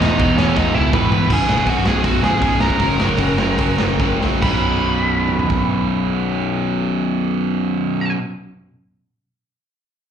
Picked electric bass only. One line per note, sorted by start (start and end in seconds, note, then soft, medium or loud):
0.03 0.19 E1 medium
0.19 0.36 E1 medium
0.39 0.55 E1 medium
0.56 0.73 E1 loud
0.75 0.91 C#1 medium
0.94 1.10 E1 medium
1.12 1.28 E1 medium
1.30 1.48 B0 medium
1.49 1.67 B0 medium
1.67 1.85 B0 medium
1.85 2.03 B0 medium
2.04 2.22 B0 medium
2.23 2.41 G#1 medium
2.42 2.60 B0 medium
2.61 2.79 B0 medium
2.80 2.98 F#1 loud
3.00 3.18 F#1 medium
3.19 3.57 F#1 medium
3.58 3.78 F#1 medium
3.81 3.99 F#1 medium
3.99 4.20 F#1 medium
4.23 4.42 A#1 medium
4.42 8.12 B0 medium